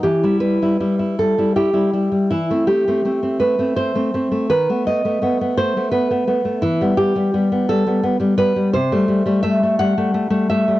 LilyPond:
\new Staff \with { instrumentName = "Nylon-string guitar" } { \time 6/8 \key e \minor \tempo 4. = 56 << { g'8 b'4 a'8 g'4 | e'8 g'4 b'8 c''4 | b'8 dis''4 c''8 b'4 | e'8 g'4 a'8 r8 b'8 |
\key a \dorian c''4 e''8 fis''4 e''8 | } \\ { e16 <g e'>16 g16 <g e'>16 <g e'>16 e'16 g16 <g e'>16 e'16 <g e'>16 <g e'>16 g16 | e16 <a c'>16 a16 <a c'>16 <a c'>16 c'16 a16 <a c'>16 c'16 <a c'>16 <a c'>16 a16 | dis16 <a b>16 a16 <a b>16 <a b>16 b16 a16 <a b>16 b16 <a b>16 <a b>16 a16 | e16 <g b>16 g16 <g b>16 <g b>16 b16 g16 <g b>16 b16 <g b>16 <g b>16 g16 |
c16 <g a>16 g16 <g a>16 <g a>16 a16 g16 <g a>16 a16 <g a>16 <g a>16 g16 | } >> }